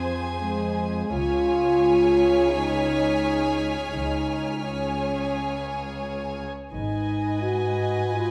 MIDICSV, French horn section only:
0, 0, Header, 1, 2, 480
1, 0, Start_track
1, 0, Tempo, 697674
1, 790, Time_signature, 4, 2, 24, 8
1, 5716, End_track
2, 0, Start_track
2, 0, Title_t, "French horn section"
2, 0, Program_c, 0, 60
2, 0, Note_on_c, 0, 60, 60
2, 291, Note_on_c, 0, 56, 60
2, 301, Note_off_c, 0, 60, 0
2, 769, Note_on_c, 0, 65, 78
2, 771, Note_off_c, 0, 56, 0
2, 1725, Note_on_c, 0, 63, 72
2, 1739, Note_off_c, 0, 65, 0
2, 2575, Note_off_c, 0, 63, 0
2, 2692, Note_on_c, 0, 63, 62
2, 3171, Note_off_c, 0, 63, 0
2, 3182, Note_on_c, 0, 61, 52
2, 4146, Note_off_c, 0, 61, 0
2, 4625, Note_on_c, 0, 63, 51
2, 5080, Note_off_c, 0, 63, 0
2, 5103, Note_on_c, 0, 66, 63
2, 5582, Note_on_c, 0, 65, 53
2, 5586, Note_off_c, 0, 66, 0
2, 5716, Note_off_c, 0, 65, 0
2, 5716, End_track
0, 0, End_of_file